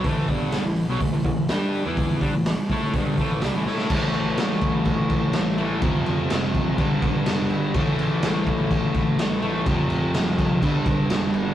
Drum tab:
CC |----------------|----------------|x-x-x-x-x-x-x-x-|x-x-x-x-x-x-x-x-|
HH |o-o-o-o-o-o-o-o-|o-o-o-o-o-o-o---|----------------|----------------|
SD |----o-------o---|----o-------o-oo|----oo------o---|----o-------o---|
BD |o-o-----o-o-----|o-o---o-o-o-----|o-----o-o-o-----|o-----o-o-o-----|

CC |x-x-x-x-x-x-x-x-|x-x-x-x-x-x-x-x-|
HH |----------------|----------------|
SD |----o-------o---|----oo------o---|
BD |o-----o-o-o-----|o-----o-o-o-----|